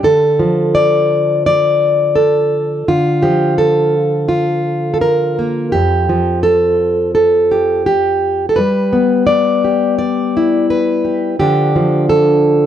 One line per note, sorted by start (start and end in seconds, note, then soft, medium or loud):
0.03 2.83 D3 medium
0.03 1.45 A4 loud
0.39 3.23 F3 medium
0.75 1.45 D5 loud
1.46 2.88 D5 loud
2.16 2.87 A4 medium
2.88 5.70 D3 medium
2.88 3.94 F4 medium
3.22 6.08 F3 medium
3.22 3.58 G4 medium
3.58 4.93 A4 medium
4.29 5.66 F4 medium
4.94 5.01 A4 medium
5.01 5.72 A#4 medium
5.39 5.74 A#3 soft
5.72 8.59 F2 medium
5.72 6.43 G4 medium
6.09 8.59 F3 medium
6.43 7.14 A4 medium
7.15 7.86 A4 medium
7.52 7.85 G4 soft
7.86 8.49 G4 medium
8.49 8.58 A4 medium
8.56 11.35 G3 medium
8.56 9.26 B4 medium
8.93 11.35 B3 medium
9.27 9.97 D5 medium
9.64 11.03 G4 soft
9.98 10.69 D5 medium
10.37 11.37 E4 soft
10.70 11.39 B4 medium
11.05 11.36 G4 soft
11.39 12.66 D3 medium
11.39 11.75 F3 medium
11.39 12.66 D4 soft
11.39 12.09 G4 medium
11.76 12.66 F3 medium
12.09 12.66 A4 medium